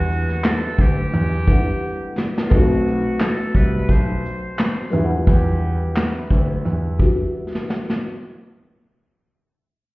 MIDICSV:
0, 0, Header, 1, 5, 480
1, 0, Start_track
1, 0, Key_signature, 1, "minor"
1, 0, Tempo, 689655
1, 1749, Time_signature, 4, 2, 24, 8
1, 6924, End_track
2, 0, Start_track
2, 0, Title_t, "Muted trumpet"
2, 0, Program_c, 0, 59
2, 0, Note_on_c, 0, 66, 100
2, 328, Note_on_c, 0, 69, 88
2, 338, Note_off_c, 0, 66, 0
2, 566, Note_on_c, 0, 67, 93
2, 576, Note_off_c, 0, 69, 0
2, 1517, Note_off_c, 0, 67, 0
2, 1722, Note_on_c, 0, 65, 64
2, 1766, Note_on_c, 0, 66, 89
2, 1777, Note_off_c, 0, 65, 0
2, 2240, Note_on_c, 0, 69, 87
2, 2251, Note_off_c, 0, 66, 0
2, 2477, Note_on_c, 0, 71, 96
2, 2488, Note_off_c, 0, 69, 0
2, 2719, Note_on_c, 0, 72, 97
2, 2729, Note_off_c, 0, 71, 0
2, 3434, Note_off_c, 0, 72, 0
2, 3683, Note_on_c, 0, 67, 91
2, 4128, Note_off_c, 0, 67, 0
2, 4164, Note_on_c, 0, 71, 90
2, 4403, Note_on_c, 0, 76, 98
2, 4413, Note_off_c, 0, 71, 0
2, 5356, Note_off_c, 0, 76, 0
2, 6924, End_track
3, 0, Start_track
3, 0, Title_t, "Upright piano"
3, 0, Program_c, 1, 0
3, 0, Control_c, 1, 64, 127
3, 0, Note_on_c, 1, 55, 62
3, 0, Note_on_c, 1, 59, 61
3, 0, Note_on_c, 1, 62, 64
3, 0, Note_on_c, 1, 64, 63
3, 0, Note_on_c, 1, 78, 72
3, 990, Note_off_c, 1, 55, 0
3, 996, Note_off_c, 1, 59, 0
3, 1002, Note_off_c, 1, 62, 0
3, 1009, Note_off_c, 1, 64, 0
3, 1015, Note_off_c, 1, 78, 0
3, 1021, Note_on_c, 1, 55, 53
3, 1027, Note_on_c, 1, 59, 47
3, 1034, Note_on_c, 1, 62, 50
3, 1040, Note_on_c, 1, 64, 50
3, 1045, Note_on_c, 1, 78, 54
3, 1730, Note_on_c, 1, 57, 60
3, 1731, Note_off_c, 1, 59, 0
3, 1742, Note_on_c, 1, 59, 57
3, 1745, Note_off_c, 1, 55, 0
3, 1752, Note_off_c, 1, 62, 0
3, 1754, Note_on_c, 1, 60, 56
3, 1755, Note_off_c, 1, 64, 0
3, 1757, Note_off_c, 1, 78, 0
3, 1757, Control_c, 1, 64, 0
3, 1766, Note_on_c, 1, 63, 57
3, 1778, Note_on_c, 1, 66, 67
3, 1880, Control_c, 1, 64, 127
3, 3392, Note_off_c, 1, 57, 0
3, 3397, Note_off_c, 1, 59, 0
3, 3404, Note_off_c, 1, 60, 0
3, 3409, Note_on_c, 1, 55, 70
3, 3410, Note_off_c, 1, 63, 0
3, 3416, Note_off_c, 1, 66, 0
3, 3421, Note_on_c, 1, 59, 69
3, 3433, Note_on_c, 1, 62, 66
3, 3437, Control_c, 1, 64, 0
3, 3445, Note_on_c, 1, 64, 69
3, 3458, Note_on_c, 1, 65, 65
3, 3495, Note_off_c, 1, 65, 0
3, 3503, Note_on_c, 1, 78, 80
3, 3556, Control_c, 1, 64, 127
3, 4831, Note_off_c, 1, 55, 0
3, 4837, Note_off_c, 1, 59, 0
3, 4843, Note_off_c, 1, 62, 0
3, 4849, Note_off_c, 1, 64, 0
3, 4862, Note_on_c, 1, 55, 44
3, 4868, Note_on_c, 1, 59, 42
3, 4874, Note_on_c, 1, 62, 43
3, 4878, Note_off_c, 1, 78, 0
3, 4879, Note_on_c, 1, 64, 40
3, 4886, Note_on_c, 1, 66, 53
3, 5586, Note_off_c, 1, 55, 0
3, 5588, Note_off_c, 1, 59, 0
3, 5592, Note_off_c, 1, 62, 0
3, 5594, Note_off_c, 1, 64, 0
3, 5598, Note_off_c, 1, 66, 0
3, 5598, Control_c, 1, 64, 0
3, 6924, End_track
4, 0, Start_track
4, 0, Title_t, "Grand piano"
4, 0, Program_c, 2, 0
4, 0, Note_on_c, 2, 40, 103
4, 161, Note_off_c, 2, 40, 0
4, 548, Note_on_c, 2, 38, 84
4, 760, Note_off_c, 2, 38, 0
4, 791, Note_on_c, 2, 40, 100
4, 1002, Note_off_c, 2, 40, 0
4, 1751, Note_on_c, 2, 35, 90
4, 2083, Note_off_c, 2, 35, 0
4, 2470, Note_on_c, 2, 36, 82
4, 2682, Note_off_c, 2, 36, 0
4, 2709, Note_on_c, 2, 35, 82
4, 2921, Note_off_c, 2, 35, 0
4, 3432, Note_on_c, 2, 40, 98
4, 3551, Note_off_c, 2, 40, 0
4, 3670, Note_on_c, 2, 40, 104
4, 4002, Note_off_c, 2, 40, 0
4, 4390, Note_on_c, 2, 38, 84
4, 4601, Note_off_c, 2, 38, 0
4, 4631, Note_on_c, 2, 40, 86
4, 4842, Note_off_c, 2, 40, 0
4, 6924, End_track
5, 0, Start_track
5, 0, Title_t, "Drums"
5, 80, Note_on_c, 9, 82, 47
5, 150, Note_off_c, 9, 82, 0
5, 201, Note_on_c, 9, 38, 32
5, 271, Note_off_c, 9, 38, 0
5, 305, Note_on_c, 9, 42, 72
5, 308, Note_on_c, 9, 39, 81
5, 311, Note_on_c, 9, 38, 103
5, 375, Note_off_c, 9, 42, 0
5, 377, Note_off_c, 9, 39, 0
5, 381, Note_off_c, 9, 38, 0
5, 546, Note_on_c, 9, 36, 91
5, 559, Note_on_c, 9, 82, 47
5, 616, Note_off_c, 9, 36, 0
5, 628, Note_off_c, 9, 82, 0
5, 786, Note_on_c, 9, 42, 83
5, 856, Note_off_c, 9, 42, 0
5, 1027, Note_on_c, 9, 36, 92
5, 1038, Note_on_c, 9, 82, 52
5, 1096, Note_off_c, 9, 36, 0
5, 1108, Note_off_c, 9, 82, 0
5, 1517, Note_on_c, 9, 38, 83
5, 1586, Note_off_c, 9, 38, 0
5, 1654, Note_on_c, 9, 38, 84
5, 1724, Note_off_c, 9, 38, 0
5, 1746, Note_on_c, 9, 42, 90
5, 1750, Note_on_c, 9, 36, 115
5, 1816, Note_off_c, 9, 42, 0
5, 1819, Note_off_c, 9, 36, 0
5, 2002, Note_on_c, 9, 42, 48
5, 2002, Note_on_c, 9, 82, 45
5, 2071, Note_off_c, 9, 42, 0
5, 2071, Note_off_c, 9, 82, 0
5, 2227, Note_on_c, 9, 42, 66
5, 2229, Note_on_c, 9, 39, 83
5, 2233, Note_on_c, 9, 38, 100
5, 2297, Note_off_c, 9, 42, 0
5, 2299, Note_off_c, 9, 39, 0
5, 2303, Note_off_c, 9, 38, 0
5, 2469, Note_on_c, 9, 36, 85
5, 2482, Note_on_c, 9, 82, 46
5, 2538, Note_off_c, 9, 36, 0
5, 2552, Note_off_c, 9, 82, 0
5, 2707, Note_on_c, 9, 36, 81
5, 2711, Note_on_c, 9, 42, 72
5, 2777, Note_off_c, 9, 36, 0
5, 2780, Note_off_c, 9, 42, 0
5, 2961, Note_on_c, 9, 82, 46
5, 3031, Note_off_c, 9, 82, 0
5, 3186, Note_on_c, 9, 42, 53
5, 3194, Note_on_c, 9, 39, 83
5, 3198, Note_on_c, 9, 38, 94
5, 3255, Note_off_c, 9, 42, 0
5, 3264, Note_off_c, 9, 39, 0
5, 3268, Note_off_c, 9, 38, 0
5, 3421, Note_on_c, 9, 82, 44
5, 3491, Note_off_c, 9, 82, 0
5, 3665, Note_on_c, 9, 42, 76
5, 3669, Note_on_c, 9, 36, 105
5, 3735, Note_off_c, 9, 42, 0
5, 3739, Note_off_c, 9, 36, 0
5, 4148, Note_on_c, 9, 42, 61
5, 4150, Note_on_c, 9, 39, 80
5, 4154, Note_on_c, 9, 38, 91
5, 4217, Note_off_c, 9, 42, 0
5, 4220, Note_off_c, 9, 39, 0
5, 4224, Note_off_c, 9, 38, 0
5, 4388, Note_on_c, 9, 36, 81
5, 4458, Note_off_c, 9, 36, 0
5, 4630, Note_on_c, 9, 42, 69
5, 4700, Note_off_c, 9, 42, 0
5, 4868, Note_on_c, 9, 36, 80
5, 4938, Note_off_c, 9, 36, 0
5, 5255, Note_on_c, 9, 38, 54
5, 5324, Note_off_c, 9, 38, 0
5, 5359, Note_on_c, 9, 38, 68
5, 5429, Note_off_c, 9, 38, 0
5, 5496, Note_on_c, 9, 38, 67
5, 5566, Note_off_c, 9, 38, 0
5, 6924, End_track
0, 0, End_of_file